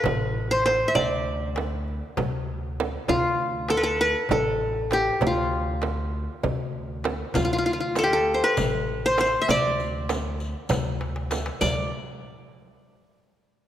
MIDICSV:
0, 0, Header, 1, 6, 480
1, 0, Start_track
1, 0, Tempo, 609137
1, 756, Time_signature, 7, 3, 24, 8
1, 10779, End_track
2, 0, Start_track
2, 0, Title_t, "Qanun"
2, 0, Program_c, 0, 107
2, 0, Note_on_c, 0, 65, 56
2, 0, Note_on_c, 0, 69, 77
2, 0, Note_on_c, 0, 71, 83
2, 402, Note_on_c, 0, 72, 87
2, 449, Note_off_c, 0, 71, 0
2, 483, Note_off_c, 0, 69, 0
2, 503, Note_off_c, 0, 65, 0
2, 514, Note_off_c, 0, 72, 0
2, 517, Note_on_c, 0, 72, 79
2, 693, Note_on_c, 0, 76, 72
2, 749, Note_on_c, 0, 74, 87
2, 1350, Note_off_c, 0, 72, 0
2, 1425, Note_off_c, 0, 76, 0
2, 2159, Note_off_c, 0, 74, 0
2, 2437, Note_on_c, 0, 65, 86
2, 2917, Note_on_c, 0, 69, 89
2, 2972, Note_on_c, 0, 71, 72
2, 3019, Note_off_c, 0, 69, 0
2, 3022, Note_on_c, 0, 69, 83
2, 3155, Note_off_c, 0, 71, 0
2, 3158, Note_on_c, 0, 71, 98
2, 3398, Note_off_c, 0, 69, 0
2, 3401, Note_on_c, 0, 69, 75
2, 3499, Note_off_c, 0, 65, 0
2, 3886, Note_on_c, 0, 67, 82
2, 4028, Note_off_c, 0, 71, 0
2, 4150, Note_on_c, 0, 65, 66
2, 4323, Note_off_c, 0, 69, 0
2, 4876, Note_off_c, 0, 67, 0
2, 5212, Note_off_c, 0, 65, 0
2, 5791, Note_on_c, 0, 65, 67
2, 5865, Note_off_c, 0, 65, 0
2, 5868, Note_on_c, 0, 65, 55
2, 5930, Note_off_c, 0, 65, 0
2, 5933, Note_on_c, 0, 65, 63
2, 5973, Note_off_c, 0, 65, 0
2, 5976, Note_on_c, 0, 65, 57
2, 6032, Note_off_c, 0, 65, 0
2, 6035, Note_on_c, 0, 65, 64
2, 6090, Note_off_c, 0, 65, 0
2, 6093, Note_on_c, 0, 65, 53
2, 6147, Note_off_c, 0, 65, 0
2, 6150, Note_on_c, 0, 65, 52
2, 6292, Note_on_c, 0, 69, 83
2, 6332, Note_on_c, 0, 67, 69
2, 6404, Note_off_c, 0, 69, 0
2, 6407, Note_on_c, 0, 69, 83
2, 6574, Note_on_c, 0, 72, 66
2, 6648, Note_on_c, 0, 71, 89
2, 6696, Note_off_c, 0, 72, 0
2, 7137, Note_on_c, 0, 72, 94
2, 7184, Note_off_c, 0, 71, 0
2, 7212, Note_off_c, 0, 65, 0
2, 7251, Note_off_c, 0, 72, 0
2, 7254, Note_on_c, 0, 72, 80
2, 7322, Note_off_c, 0, 67, 0
2, 7329, Note_off_c, 0, 69, 0
2, 7419, Note_on_c, 0, 76, 71
2, 7489, Note_on_c, 0, 74, 95
2, 8087, Note_off_c, 0, 72, 0
2, 8151, Note_off_c, 0, 76, 0
2, 8891, Note_off_c, 0, 74, 0
2, 9148, Note_on_c, 0, 74, 74
2, 9375, Note_off_c, 0, 74, 0
2, 10779, End_track
3, 0, Start_track
3, 0, Title_t, "Upright bass"
3, 0, Program_c, 1, 32
3, 42, Note_on_c, 1, 33, 79
3, 654, Note_off_c, 1, 33, 0
3, 750, Note_on_c, 1, 38, 88
3, 1572, Note_off_c, 1, 38, 0
3, 1719, Note_on_c, 1, 38, 81
3, 2331, Note_off_c, 1, 38, 0
3, 2432, Note_on_c, 1, 38, 87
3, 3252, Note_off_c, 1, 38, 0
3, 3393, Note_on_c, 1, 33, 75
3, 4007, Note_off_c, 1, 33, 0
3, 4114, Note_on_c, 1, 38, 88
3, 4933, Note_off_c, 1, 38, 0
3, 5073, Note_on_c, 1, 38, 86
3, 5687, Note_off_c, 1, 38, 0
3, 5798, Note_on_c, 1, 38, 87
3, 6616, Note_off_c, 1, 38, 0
3, 6759, Note_on_c, 1, 33, 80
3, 7372, Note_off_c, 1, 33, 0
3, 7478, Note_on_c, 1, 38, 94
3, 8297, Note_off_c, 1, 38, 0
3, 8433, Note_on_c, 1, 38, 80
3, 9049, Note_off_c, 1, 38, 0
3, 9155, Note_on_c, 1, 38, 83
3, 9378, Note_off_c, 1, 38, 0
3, 10779, End_track
4, 0, Start_track
4, 0, Title_t, "Darbuka"
4, 29, Note_on_c, 9, 64, 93
4, 108, Note_off_c, 9, 64, 0
4, 517, Note_on_c, 9, 63, 68
4, 596, Note_off_c, 9, 63, 0
4, 752, Note_on_c, 9, 64, 81
4, 831, Note_off_c, 9, 64, 0
4, 988, Note_on_c, 9, 62, 27
4, 1067, Note_off_c, 9, 62, 0
4, 1229, Note_on_c, 9, 63, 69
4, 1307, Note_off_c, 9, 63, 0
4, 1480, Note_on_c, 9, 62, 23
4, 1559, Note_off_c, 9, 62, 0
4, 1711, Note_on_c, 9, 64, 92
4, 1790, Note_off_c, 9, 64, 0
4, 2430, Note_on_c, 9, 64, 82
4, 2508, Note_off_c, 9, 64, 0
4, 2669, Note_on_c, 9, 62, 24
4, 2748, Note_off_c, 9, 62, 0
4, 2904, Note_on_c, 9, 63, 65
4, 2983, Note_off_c, 9, 63, 0
4, 3156, Note_on_c, 9, 62, 22
4, 3234, Note_off_c, 9, 62, 0
4, 3381, Note_on_c, 9, 64, 75
4, 3459, Note_off_c, 9, 64, 0
4, 3867, Note_on_c, 9, 63, 65
4, 3946, Note_off_c, 9, 63, 0
4, 4105, Note_on_c, 9, 64, 85
4, 4183, Note_off_c, 9, 64, 0
4, 4344, Note_on_c, 9, 62, 22
4, 4423, Note_off_c, 9, 62, 0
4, 4584, Note_on_c, 9, 63, 59
4, 4662, Note_off_c, 9, 63, 0
4, 5070, Note_on_c, 9, 64, 83
4, 5149, Note_off_c, 9, 64, 0
4, 5549, Note_on_c, 9, 63, 59
4, 5628, Note_off_c, 9, 63, 0
4, 5784, Note_on_c, 9, 64, 79
4, 5863, Note_off_c, 9, 64, 0
4, 6268, Note_on_c, 9, 63, 66
4, 6347, Note_off_c, 9, 63, 0
4, 6514, Note_on_c, 9, 62, 25
4, 6593, Note_off_c, 9, 62, 0
4, 6756, Note_on_c, 9, 64, 90
4, 6834, Note_off_c, 9, 64, 0
4, 7236, Note_on_c, 9, 63, 73
4, 7315, Note_off_c, 9, 63, 0
4, 7477, Note_on_c, 9, 64, 94
4, 7555, Note_off_c, 9, 64, 0
4, 7726, Note_on_c, 9, 62, 26
4, 7805, Note_off_c, 9, 62, 0
4, 7953, Note_on_c, 9, 63, 74
4, 8032, Note_off_c, 9, 63, 0
4, 8189, Note_on_c, 9, 62, 23
4, 8268, Note_off_c, 9, 62, 0
4, 8436, Note_on_c, 9, 64, 102
4, 8514, Note_off_c, 9, 64, 0
4, 8675, Note_on_c, 9, 63, 56
4, 8753, Note_off_c, 9, 63, 0
4, 8794, Note_on_c, 9, 62, 62
4, 8872, Note_off_c, 9, 62, 0
4, 8911, Note_on_c, 9, 63, 71
4, 8990, Note_off_c, 9, 63, 0
4, 9030, Note_on_c, 9, 62, 82
4, 9109, Note_off_c, 9, 62, 0
4, 9150, Note_on_c, 9, 64, 66
4, 9229, Note_off_c, 9, 64, 0
4, 10779, End_track
5, 0, Start_track
5, 0, Title_t, "Frame drum"
5, 44, Note_on_c, 9, 64, 88
5, 123, Note_off_c, 9, 64, 0
5, 531, Note_on_c, 9, 64, 62
5, 610, Note_off_c, 9, 64, 0
5, 752, Note_on_c, 9, 64, 89
5, 831, Note_off_c, 9, 64, 0
5, 1242, Note_on_c, 9, 64, 66
5, 1321, Note_off_c, 9, 64, 0
5, 1715, Note_on_c, 9, 64, 84
5, 1793, Note_off_c, 9, 64, 0
5, 2207, Note_on_c, 9, 64, 75
5, 2286, Note_off_c, 9, 64, 0
5, 2432, Note_on_c, 9, 64, 79
5, 2511, Note_off_c, 9, 64, 0
5, 2913, Note_on_c, 9, 64, 65
5, 2992, Note_off_c, 9, 64, 0
5, 3396, Note_on_c, 9, 64, 92
5, 3475, Note_off_c, 9, 64, 0
5, 3876, Note_on_c, 9, 64, 68
5, 3955, Note_off_c, 9, 64, 0
5, 4111, Note_on_c, 9, 64, 96
5, 4190, Note_off_c, 9, 64, 0
5, 4592, Note_on_c, 9, 64, 69
5, 4671, Note_off_c, 9, 64, 0
5, 5072, Note_on_c, 9, 64, 73
5, 5151, Note_off_c, 9, 64, 0
5, 5558, Note_on_c, 9, 64, 74
5, 5636, Note_off_c, 9, 64, 0
5, 5797, Note_on_c, 9, 64, 75
5, 5876, Note_off_c, 9, 64, 0
5, 6272, Note_on_c, 9, 64, 68
5, 6351, Note_off_c, 9, 64, 0
5, 6755, Note_on_c, 9, 64, 70
5, 6833, Note_off_c, 9, 64, 0
5, 7233, Note_on_c, 9, 64, 61
5, 7311, Note_off_c, 9, 64, 0
5, 7474, Note_on_c, 9, 64, 74
5, 7553, Note_off_c, 9, 64, 0
5, 7954, Note_on_c, 9, 64, 71
5, 8033, Note_off_c, 9, 64, 0
5, 8428, Note_on_c, 9, 64, 79
5, 8507, Note_off_c, 9, 64, 0
5, 8920, Note_on_c, 9, 64, 67
5, 8999, Note_off_c, 9, 64, 0
5, 9153, Note_on_c, 9, 64, 76
5, 9232, Note_off_c, 9, 64, 0
5, 10779, End_track
6, 0, Start_track
6, 0, Title_t, "Riq"
6, 5793, Note_on_c, 9, 54, 59
6, 5871, Note_off_c, 9, 54, 0
6, 6032, Note_on_c, 9, 54, 18
6, 6111, Note_off_c, 9, 54, 0
6, 6273, Note_on_c, 9, 54, 47
6, 6352, Note_off_c, 9, 54, 0
6, 6753, Note_on_c, 9, 54, 59
6, 6832, Note_off_c, 9, 54, 0
6, 7239, Note_on_c, 9, 54, 44
6, 7318, Note_off_c, 9, 54, 0
6, 7481, Note_on_c, 9, 54, 52
6, 7560, Note_off_c, 9, 54, 0
6, 7721, Note_on_c, 9, 54, 17
6, 7800, Note_off_c, 9, 54, 0
6, 7959, Note_on_c, 9, 54, 47
6, 8038, Note_off_c, 9, 54, 0
6, 8197, Note_on_c, 9, 54, 18
6, 8275, Note_off_c, 9, 54, 0
6, 8424, Note_on_c, 9, 54, 57
6, 8503, Note_off_c, 9, 54, 0
6, 8913, Note_on_c, 9, 54, 52
6, 8991, Note_off_c, 9, 54, 0
6, 9151, Note_on_c, 9, 54, 74
6, 9230, Note_off_c, 9, 54, 0
6, 10779, End_track
0, 0, End_of_file